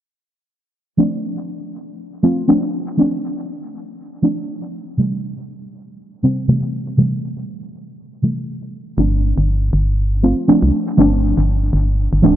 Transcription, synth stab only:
0.97 2.20 F3 medium
0.97 2.21 A3 medium
0.97 2.21 C4 medium
0.97 2.21 D4 medium
2.23 2.45 F3 medium
2.23 2.46 A3 medium
2.23 2.46 C4 medium
2.23 2.46 F4 medium
2.48 2.95 F3 medium
2.48 2.96 A3 medium
2.48 2.96 C4 medium
2.48 2.96 D4 medium
2.97 4.20 F3 medium
2.97 4.21 A3 medium
2.97 4.21 C4 medium
2.97 4.21 D4 medium
4.22 4.95 F3 medium
4.22 4.95 A3 medium
4.22 4.96 C4 medium
4.22 4.96 D4 loud
4.97 6.20 C3 medium
4.97 6.21 E3 medium
4.97 6.21 G3 medium
4.97 6.21 A3 medium
6.23 6.45 C3 medium
6.23 6.46 E3 medium
6.23 6.46 G3 medium
6.23 6.46 C4 medium
6.48 6.95 C3 medium
6.48 6.96 E3 medium
6.48 6.96 G3 medium
6.48 6.96 A3 medium
6.97 8.20 C3 medium
6.97 8.20 E3 medium
6.97 8.21 G3 medium
6.97 8.21 A3 medium
8.22 8.95 C3 medium
8.22 8.95 E3 medium
8.22 8.96 G3 medium
8.22 8.96 A3 medium
8.97 10.20 F3 medium
8.97 10.20 A3 medium
8.97 10.21 C4 medium
8.97 10.21 D4 medium
10.23 10.45 F3 medium
10.23 10.46 A3 medium
10.23 10.46 C4 medium
10.23 10.46 F4 medium
10.48 10.95 F3 medium
10.48 10.96 A3 medium
10.48 10.96 C4 medium
10.48 10.96 D4 medium
10.97 12.20 F3 medium
10.97 12.21 A3 medium
10.97 12.21 C4 medium
10.97 12.21 D4 medium
12.22 12.36 F3 medium
12.22 12.36 A3 medium
12.22 12.36 C4 medium
12.22 12.36 D4 loud

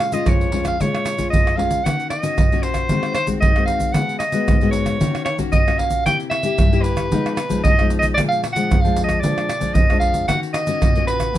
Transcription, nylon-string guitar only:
0.00 0.24 A#2 medium
0.00 0.10 F4 medium
0.12 0.49 G#3 medium
0.12 0.49 C#4 medium
0.12 0.49 F4 medium
0.27 0.77 F2 medium
0.53 0.76 G#3 medium
0.53 0.76 C#4 medium
0.53 0.76 F4 medium
0.80 1.30 A#2 medium
0.80 1.15 G#3 soft
0.80 1.16 C#4 medium
0.80 1.16 F4 medium
1.18 1.54 G#3 medium
1.18 1.54 C#4 medium
1.18 1.54 F4 medium
1.33 1.83 F2 medium
1.57 1.80 G#3 medium
1.57 1.80 C#4 medium
1.57 1.81 F4 medium
1.85 2.35 D#3 medium
1.85 2.10 A#3 soft
1.85 2.10 C#4 soft
1.85 2.10 F#4 soft
2.23 2.46 A#3 medium
2.23 2.46 C#4 medium
2.23 2.46 F#4 medium
2.38 2.88 A#2 medium
2.52 2.87 A#3 medium
2.52 2.87 C#4 medium
2.52 2.87 F#4 medium
2.90 3.40 D#3 medium
2.90 3.15 G#3 medium
2.90 3.15 C4 medium
2.90 3.15 F#4 medium
3.27 3.51 G#3 medium
3.27 3.51 C4 medium
3.27 3.51 F#4 medium
3.43 3.93 D#3 medium
3.57 3.92 G#3 medium
3.57 3.92 C4 medium
3.57 3.92 F#4 medium
3.95 4.46 C#3 medium
3.95 4.20 G#3 soft
3.95 4.20 B3 soft
3.95 4.21 F#4 soft
4.33 4.56 G#3 medium
4.33 4.56 B3 medium
4.33 4.57 F#4 medium
4.48 4.98 G#2 medium
4.62 4.97 G#3 medium
4.62 4.97 B3 medium
4.62 4.98 F#4 medium
5.01 5.51 D#3 medium
5.01 5.26 A#3 medium
5.01 5.26 C#4 medium
5.01 5.26 F#4 medium
5.39 5.62 A#3 medium
5.39 5.62 C#4 medium
5.39 5.62 F#4 medium
5.53 6.04 A#2 medium
5.67 6.03 A#3 medium
5.67 6.03 C#4 medium
5.67 6.03 F#4 medium
6.06 6.57 C3 medium
6.06 6.42 A#3 medium
6.06 6.42 E4 medium
6.06 6.42 G4 medium
6.44 6.68 A#3 medium
6.44 6.68 E4 medium
6.44 6.68 G4 medium
6.60 7.10 G2 medium
6.72 7.08 A#3 medium
6.72 7.08 E4 medium
6.72 7.08 G4 medium
7.12 7.62 B2 medium
7.12 7.37 F3 soft
7.12 7.37 G#3 medium
7.12 7.37 D#4 medium
7.49 7.73 F3 medium
7.49 7.73 G#3 medium
7.49 7.73 D#4 medium
7.65 8.15 B2 medium
7.79 8.14 F3 medium
7.79 8.15 G#3 medium
7.79 8.15 D#4 medium
8.17 8.68 A#2 medium
8.17 8.42 F3 medium
8.17 8.43 G#3 medium
8.17 8.43 D4 medium
8.56 8.79 F3 medium
8.56 8.79 G#3 medium
8.56 8.79 D4 medium
8.70 9.20 F2 medium
8.84 9.19 F3 medium
8.84 9.20 G#3 medium
8.84 9.20 D4 medium
9.23 9.74 A#2 medium
9.23 9.48 F3 medium
9.23 9.48 G#3 medium
9.23 9.48 D4 medium
9.60 9.84 F3 medium
9.60 9.84 G#3 medium
9.60 9.84 D4 medium
9.76 10.26 F2 medium
9.91 10.26 F3 medium
9.91 10.26 G#3 medium
9.91 10.26 D4 medium
10.29 10.80 D#3 medium
10.29 10.65 A#3 soft
10.29 10.65 C#4 medium
10.29 10.65 F#4 medium
10.68 10.91 A#3 medium
10.68 10.91 C#4 medium
10.68 10.91 F#4 medium
10.83 11.33 A#2 medium
10.97 11.31 A#3 medium
10.97 11.31 C#4 medium
10.97 11.32 F#4 medium
11.34 11.38 B2 medium
11.34 11.38 F#3 medium
11.34 11.38 A#3 medium
11.34 11.38 D#4 medium

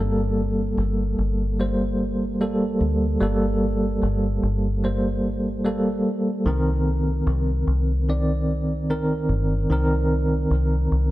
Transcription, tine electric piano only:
0.00 1.54 G3 medium
0.00 1.55 A#3 medium
0.00 1.56 A4 loud
1.59 2.36 G3 medium
1.59 2.36 A#3 medium
1.59 2.36 C5 medium
2.41 3.17 G3 medium
2.41 3.17 A#3 medium
2.41 3.17 A4 medium
3.21 4.78 G3 medium
3.21 4.79 A#3 medium
3.21 4.80 A4 medium
4.84 5.60 G3 medium
4.84 5.60 A#3 medium
4.84 5.61 C5 medium
5.65 6.41 G3 medium
5.65 6.41 A#3 medium
5.65 6.42 A4 medium
6.46 8.03 D#3 loud
6.46 8.04 C4 medium
6.46 8.04 A#4 loud
8.09 8.85 D#3 medium
8.09 8.85 C4 medium
8.09 8.85 D5 medium
8.90 9.66 D#3 medium
8.90 9.66 C4 medium
8.90 9.66 A#4 medium
9.70 11.11 D#3 medium
9.70 11.11 C4 medium
9.70 11.11 A#4 medium

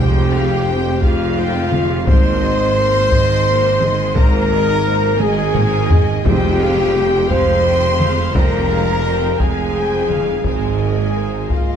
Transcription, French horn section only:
0.00 1.00 G4 loud
1.01 2.06 F4 loud
2.05 4.11 C5 loud
4.16 5.18 A#4 loud
5.21 6.25 G#4 loud
6.24 7.30 G4 loud
7.28 8.16 C5 loud
8.33 9.37 A#4 loud
9.41 10.43 G#4 loud
10.44 11.47 G#4 loud
11.51 11.76 F4 medium

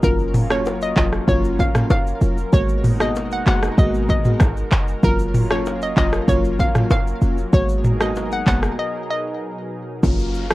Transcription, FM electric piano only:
0.03 0.46 F#3 medium
0.03 0.46 A#3 medium
0.03 0.47 C#4 medium
0.03 0.47 F4 medium
0.50 0.93 F#3 medium
0.50 0.93 A#3 medium
0.50 0.93 C#4 medium
0.50 0.93 F4 medium
0.96 1.25 F#3 medium
0.96 1.25 A#3 medium
0.96 1.26 C#4 medium
0.96 1.26 F4 medium
1.28 1.71 F#3 medium
1.28 1.71 A#3 medium
1.28 1.72 C#4 medium
1.28 1.72 F4 loud
1.75 1.90 F#3 medium
1.75 1.90 A#3 medium
1.75 1.90 C#4 medium
1.75 1.90 F4 medium
2.21 2.37 F#3 medium
2.21 2.38 A#3 medium
2.21 2.38 C#4 medium
2.21 2.38 F4 medium
2.53 2.96 G#3 medium
2.53 2.96 A#3 medium
2.53 2.97 B3 medium
2.53 2.97 F#4 loud
3.00 3.43 G#3 medium
3.00 3.43 A#3 medium
3.00 3.43 B3 medium
3.00 3.43 F#4 medium
3.46 3.75 G#3 medium
3.46 3.75 A#3 medium
3.46 3.76 B3 medium
3.46 3.76 F#4 medium
3.78 4.21 G#3 loud
3.78 4.21 A#3 medium
3.78 4.22 B3 medium
3.78 4.22 F#4 loud
4.25 4.40 G#3 medium
4.25 4.40 A#3 medium
4.25 4.40 B3 medium
4.25 4.40 F#4 medium
5.03 5.46 F#3 medium
5.03 5.46 A#3 medium
5.03 5.47 C#4 medium
5.03 5.47 F4 loud
5.50 5.93 F#3 medium
5.50 5.93 A#3 medium
5.50 5.93 C#4 medium
5.50 5.93 F4 medium
5.96 6.25 F#3 medium
5.96 6.25 A#3 medium
5.96 6.26 C#4 medium
5.96 6.26 F4 medium
6.28 6.71 F#3 medium
6.28 6.71 A#3 medium
6.28 6.72 C#4 medium
6.28 6.72 F4 loud
6.75 6.90 F#3 medium
6.75 6.90 A#3 medium
6.75 6.90 C#4 medium
6.75 6.90 F4 medium
7.21 7.37 F#3 medium
7.21 7.38 A#3 medium
7.21 7.38 C#4 medium
7.21 7.38 F4 medium
7.53 7.96 G#3 medium
7.53 7.96 A#3 medium
7.53 7.97 B3 medium
7.53 7.97 F#4 loud
8.00 8.43 G#3 medium
8.00 8.43 A#3 medium
8.00 8.43 B3 medium
8.00 8.43 F#4 medium
8.46 8.75 G#3 medium
8.46 8.76 A#3 medium
8.46 8.76 B3 medium
8.46 8.76 F#4 medium
10.03 10.46 F#3 medium
10.03 10.46 A#3 medium
10.03 10.47 C#4 medium
10.03 10.47 F4 medium
10.50 10.54 F#3 medium
10.50 10.54 A#3 medium
10.50 10.54 C#4 medium
10.50 10.54 F4 medium

